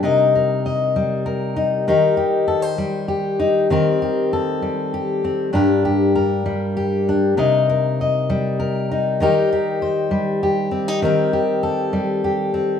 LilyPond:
\new Staff \with { instrumentName = "Steel-string acoustic guitar" } { \time 6/8 \key c \dorian \tempo 4. = 66 << { <ees' bes' ees''>8 bes'8 ees''4 bes'8 ees'8 | <ees' g' bes'>8 g'8 a'16 c''8. g'8 ees'8 | <c' g' bes'>8 g'8 a'4 g'8 c'8 | <d' g' bes'>8 g'8 bes'4 g'8 d'8 |
<ees' bes' ees''>8 bes'8 ees''4 bes'8 ees'8 | <ees' g' bes'>8 g'8 c''4 g'8 c'16 ees'16 | <c' g' bes'>8 g'8 a'4 g'8 c'8 | } \\ { <c g>4. g4. | ees4. g4. | ees4. g4. | g,4. g4. |
c4. g4. | ees4. g4. | ees4. g4. | } >> }